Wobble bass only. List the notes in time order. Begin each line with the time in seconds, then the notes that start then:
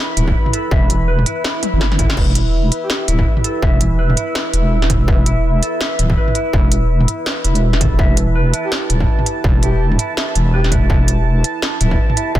0.17 D1
0.71 E1
1.73 G1
1.99 G1
2.17 E1
3.08 D1
3.62 E1
4.53 E1
5.08 E1
5.99 D1
6.53 E1
7.44 E1
7.81 F#1
7.91 E1
7.99 E1
8.90 D1
9.44 E1
10.35 E1
10.90 E1
11.81 D1
12.35 E1